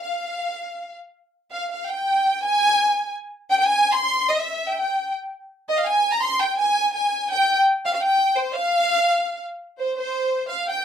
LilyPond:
\new Staff \with { instrumentName = "Violin section" } { \time 3/4 \key f \minor \tempo 4 = 166 f''2~ f''8 r8 | r4 f''8 f''8 g''4~ | g''8 aes''2 r8 | r8 g''16 g''16 aes''8. c'''4 ees''16 |
e''8. g''16 g''4 r4 | r8 ees''16 f''16 aes''8. bes''16 c'''8 g''8 | aes''4 aes''4 g''8. r16 | r8 f''16 f''16 g''4 c''8 f''8~ |
f''2 r4 | \key c \phrygian c''8 c''4. f''8 g''8 | }